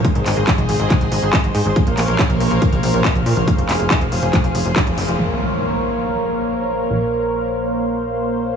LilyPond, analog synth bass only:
\new Staff \with { instrumentName = "Analog synth bass" } { \clef bass \time 4/4 \key bes \minor \tempo 4 = 140 r16 aes,,16 aes,,16 aes,,16 r16 aes,,16 aes,,16 aes,,16 r16 aes,,16 aes,,16 aes,,16 r16 aes,,16 aes,16 aes,,16 | r16 bes,,16 bes,,16 bes,,16 r16 bes,,16 bes,,16 bes,,16 r16 bes,,16 bes,,16 bes,,16 r16 bes,,16 bes,16 bes,,16 | r16 f,,16 f,,16 f,,16 r16 f,,16 f,,16 f,,16 r16 f,,16 f,,16 f,,16 r16 f,,16 ges,,16 f,,16 | bes,,1 |
bes,,1 | }